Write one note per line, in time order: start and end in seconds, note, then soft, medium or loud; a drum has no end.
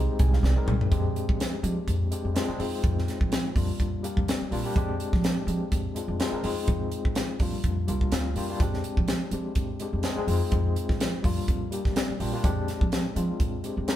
0.00 0.51 G#3 medium
0.00 0.52 C4 medium
0.00 0.52 D#4 medium
0.00 0.52 G4 medium
0.19 0.41 C2 medium
0.19 0.32 G#5 medium
0.19 kick medium
0.19 closed hi-hat medium
0.33 0.43 F5 medium
0.33 snare soft
0.43 0.55 C2 medium
0.43 0.89 D5 medium
0.43 snare medium
0.56 0.89 G#3 medium
0.56 0.89 C4 medium
0.56 0.90 D#4 medium
0.56 0.90 A#4 medium
0.56 muted upright bass stroke soft
0.67 0.79 C2 medium
0.67 mid tom medium
0.81 floor tom medium
0.91 1.12 F2 medium
0.91 1.59 G#3 medium
0.91 1.59 C4 medium
0.91 1.60 D4 medium
0.91 1.60 G4 medium
0.91 kick medium
0.91 closed hi-hat medium
1.16 closed hi-hat soft
1.29 1.50 F3 medium
1.29 kick medium
1.40 snare medium
1.40 closed hi-hat medium
1.63 1.75 F3 medium
1.63 2.09 G#3 medium
1.63 2.09 C4 medium
1.63 2.09 D4 medium
1.63 2.10 G4 medium
1.63 closed hi-hat medium
1.87 2.08 F2 medium
1.87 kick medium
1.87 closed hi-hat medium
2.11 2.33 G#3 medium
2.11 2.34 C4 medium
2.11 2.35 D4 soft
2.11 2.35 G4 medium
2.11 closed hi-hat medium
2.25 2.34 F2 medium
2.34 2.47 G#3 medium
2.34 2.48 C4 medium
2.34 2.48 D4 medium
2.34 2.48 F4 medium
2.34 snare loud
2.34 closed hi-hat medium
2.48 2.59 G#3 medium
2.48 2.59 C4 medium
2.48 2.59 D4 medium
2.48 2.60 G#4 medium
2.48 muted upright bass stroke soft
2.59 2.71 F2 medium
2.59 3.50 G#3 medium
2.59 3.51 C4 medium
2.59 3.51 D#4 medium
2.59 3.51 F4 medium
2.59 open hi-hat medium
2.84 3.05 F2 medium
2.84 kick loud
2.84 closed hi-hat medium
2.99 snare soft
3.08 snare soft
3.08 closed hi-hat soft
3.21 3.42 F3 medium
3.21 kick medium
3.32 snare loud
3.32 closed hi-hat medium
3.55 3.67 F2 medium
3.55 4.01 G3 medium
3.55 4.01 A#3 medium
3.55 4.01 D4 medium
3.55 4.02 F4 medium
3.55 kick medium
3.55 open hi-hat medium
3.80 4.01 F2 medium
3.80 kick medium
3.80 closed hi-hat medium
4.03 4.49 G3 medium
4.03 4.49 A#3 medium
4.03 4.49 D4 medium
4.03 4.50 G4 medium
4.03 4.26 F5 soft
4.03 closed hi-hat medium
4.17 4.26 F2 medium
4.17 kick medium
4.28 4.73 D5 medium
4.28 snare loud
4.28 closed hi-hat medium
4.40 muted upright bass stroke soft
4.51 4.63 A#1 medium
4.51 4.63 G3 medium
4.51 4.64 A#3 medium
4.51 4.64 D4 medium
4.51 4.65 F4 medium
4.51 open hi-hat medium
4.64 4.75 G3 medium
4.64 4.75 A#3 medium
4.64 4.76 D4 medium
4.64 4.76 G4 medium
4.75 4.97 F2 medium
4.75 5.44 G#3 medium
4.75 5.44 C4 medium
4.75 5.44 D4 medium
4.75 5.45 G4 medium
4.75 kick medium
4.75 closed hi-hat medium
5.00 closed hi-hat soft
5.13 5.34 F3 medium
5.13 kick medium
5.13 snare soft
5.24 snare medium
5.24 closed hi-hat medium
5.47 5.59 F3 medium
5.47 5.93 G#3 medium
5.47 5.93 C4 medium
5.47 5.94 D4 medium
5.47 5.94 G4 medium
5.47 closed hi-hat medium
5.72 5.93 F2 medium
5.72 kick medium
5.72 closed hi-hat medium
5.95 6.18 G#3 medium
5.95 6.19 C4 medium
5.95 6.19 D4 medium
5.95 6.19 F4 medium
5.95 closed hi-hat medium
6.08 6.18 F2 medium
6.20 6.32 G#3 medium
6.20 6.32 C4 medium
6.20 6.33 D4 medium
6.20 6.33 F4 medium
6.20 snare loud
6.20 closed hi-hat medium
6.32 6.43 G#3 medium
6.32 6.43 C4 medium
6.32 6.44 D4 medium
6.32 6.44 A#4 medium
6.32 muted upright bass stroke soft
6.43 6.55 F2 medium
6.43 7.35 G#3 medium
6.43 7.35 C4 medium
6.43 7.35 D#4 medium
6.43 7.36 F4 medium
6.43 open hi-hat medium
6.68 6.89 F2 medium
6.68 kick medium
6.68 closed hi-hat medium
6.92 closed hi-hat medium
7.05 7.26 F3 medium
7.05 kick medium
7.15 snare loud
7.15 closed hi-hat medium
7.40 7.51 F2 medium
7.40 7.85 G3 medium
7.40 7.86 A#3 medium
7.40 7.86 D4 medium
7.40 7.87 F4 medium
7.40 kick medium
7.40 open hi-hat medium
7.64 7.85 F2 medium
7.64 kick medium
7.64 closed hi-hat medium
7.87 8.10 C2 medium
7.87 8.33 G3 medium
7.87 8.33 A#3 medium
7.87 8.34 D4 medium
7.87 8.34 F4 medium
7.87 8.11 D5 medium
7.87 closed hi-hat medium
8.01 kick medium
8.12 8.34 D2 medium
8.12 8.35 F5 medium
8.12 snare loud
8.12 closed hi-hat medium
8.35 8.57 F2 medium
8.35 8.48 G3 medium
8.35 8.49 A#3 medium
8.35 8.49 D4 medium
8.35 8.49 F4 medium
8.35 8.59 G5 medium
8.35 open hi-hat medium
8.49 8.60 G3 medium
8.49 8.60 A#3 medium
8.49 8.60 D4 medium
8.49 8.61 F4 medium
8.60 8.81 F2 medium
8.60 9.28 G#3 medium
8.60 9.28 C4 medium
8.60 9.29 D4 medium
8.60 9.29 G4 medium
8.60 kick medium
8.60 closed hi-hat medium
8.74 snare soft
8.84 closed hi-hat soft
8.97 9.18 F3 medium
8.97 kick medium
9.08 snare medium
9.08 closed hi-hat medium
9.31 9.43 F3 medium
9.31 9.77 G#3 medium
9.31 9.78 C4 medium
9.31 9.78 D4 medium
9.31 9.78 G4 medium
9.31 closed hi-hat soft
9.55 9.77 F2 medium
9.55 kick medium
9.55 closed hi-hat medium
9.80 10.02 G#3 medium
9.80 10.03 C4 medium
9.80 10.04 D4 medium
9.80 10.04 G4 medium
9.80 closed hi-hat medium
9.93 10.03 F2 medium
10.03 10.15 G#3 medium
10.03 10.16 C4 medium
10.03 10.17 D4 medium
10.03 10.17 G#4 medium
10.03 snare medium
10.03 closed hi-hat medium
10.16 10.26 G#3 medium
10.16 10.27 C4 medium
10.16 10.28 D4 medium
10.16 10.28 G#4 medium
10.16 muted upright bass stroke soft
10.27 10.39 F2 medium
10.27 11.18 G#3 medium
10.27 11.19 C4 medium
10.27 11.19 D#4 medium
10.27 11.19 F4 medium
10.27 open hi-hat medium
10.52 10.73 F2 medium
10.52 kick medium
10.52 closed hi-hat medium
10.76 closed hi-hat medium
10.89 11.10 F3 medium
10.89 kick medium
10.89 snare soft
11.00 snare medium
11.00 closed hi-hat medium
11.23 11.35 F2 medium
11.23 11.69 G3 medium
11.23 11.69 A#3 medium
11.23 11.70 D4 medium
11.23 11.70 F4 medium
11.23 kick medium
11.23 open hi-hat medium
11.48 11.69 F2 medium
11.48 kick medium
11.48 closed hi-hat medium
11.71 12.17 G3 medium
11.71 12.17 A#3 medium
11.71 12.18 D4 medium
11.71 12.18 G4 medium
11.71 closed hi-hat medium
11.85 11.95 F2 medium
11.85 kick medium
11.85 snare soft
11.96 12.19 D5 medium
11.96 snare loud
11.96 closed hi-hat medium
12.09 muted upright bass stroke soft
12.20 12.32 A#1 medium
12.20 12.32 G3 medium
12.20 12.32 A#3 medium
12.20 12.33 D4 medium
12.20 12.33 F4 medium
12.20 12.43 G5 medium
12.20 open hi-hat medium
12.33 12.43 G3 medium
12.33 12.44 A#3 medium
12.33 12.43 D4 medium
12.33 12.44 F4 medium
12.43 12.65 F2 medium
12.43 13.12 G#3 medium
12.43 13.12 C4 medium
12.43 13.12 D4 medium
12.43 13.13 G4 loud
12.43 kick loud
12.43 closed hi-hat medium
12.68 snare soft
12.68 closed hi-hat medium
12.81 13.02 F3 medium
12.81 kick medium
12.92 snare medium
12.92 closed hi-hat medium
13.15 13.27 F3 medium
13.15 13.61 G#3 medium
13.15 13.61 C4 medium
13.15 13.61 D4 medium
13.15 13.62 F4 medium
13.15 closed hi-hat medium
13.40 13.61 F2 medium
13.40 kick medium
13.40 closed hi-hat medium
13.63 13.86 G#3 medium
13.63 13.87 C4 medium
13.63 13.87 D4 medium
13.63 13.88 G4 medium
13.63 closed hi-hat medium
13.77 13.87 F2 medium
13.88 13.96 G#3 medium
13.88 13.96 C4 medium
13.88 13.96 D4 medium
13.88 13.96 A#4 medium
13.88 snare loud
13.88 closed hi-hat medium